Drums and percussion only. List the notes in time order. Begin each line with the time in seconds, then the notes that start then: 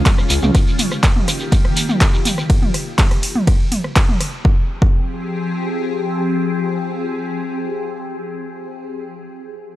0.06 kick, clap, mid tom, ride, shekere
0.18 cross-stick, shekere
0.30 open hi-hat, shekere
0.43 mid tom, shekere
0.55 kick, cross-stick, ride, shekere
0.68 shekere
0.79 mid tom, open hi-hat, shekere
0.92 cross-stick, shekere
1.03 kick, clap, ride, shekere
1.16 mid tom
1.28 cross-stick, open hi-hat, shekere
1.40 shekere
1.52 kick, mid tom, ride, shekere
1.65 cross-stick
1.76 open hi-hat, shekere
1.89 mid tom, shekere
2.01 kick, cross-stick, clap, ride, shekere
2.14 shekere
2.25 mid tom, open hi-hat, shekere
2.38 cross-stick, shekere
2.50 kick, ride
2.62 mid tom
2.74 cross-stick, open hi-hat
2.99 kick, clap, mid tom, ride
3.11 cross-stick, open hi-hat
3.23 open hi-hat
3.35 mid tom
3.47 kick, cross-stick, ride
3.72 mid tom, open hi-hat
3.84 cross-stick
3.96 kick, clap, ride
4.09 mid tom
4.21 cross-stick, open hi-hat
4.45 kick
4.82 kick